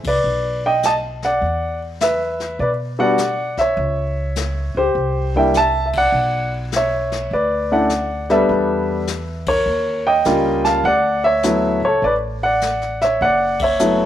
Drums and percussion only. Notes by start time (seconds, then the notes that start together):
0.04 kick, ride
0.25 brush sweep
0.83 snare, hi-hat pedal
1.22 snare
1.42 brush sweep, kick
2.00 snare, hi-hat pedal
2.40 snare
2.60 brush sweep, kick
3.18 snare, hi-hat pedal
3.57 kick, snare
3.77 brush sweep, kick
4.36 snare, hi-hat pedal
4.95 brush sweep, kick
5.34 kick
5.54 snare, hi-hat pedal
5.93 kick, ride
6.14 brush sweep
6.72 snare, hi-hat pedal
7.12 snare
7.31 brush sweep, kick
7.89 snare, hi-hat pedal
8.30 snare
8.49 brush sweep, kick
9.07 snare, hi-hat pedal
9.46 kick, ride
9.66 brush sweep
10.25 snare, hi-hat pedal
10.65 snare
10.84 brush sweep, kick
11.43 snare, hi-hat pedal
12.02 brush sweep, kick
12.61 snare, hi-hat pedal
12.82 snare
13.01 snare
13.21 brush sweep, kick
13.59 kick, ride
13.79 hi-hat pedal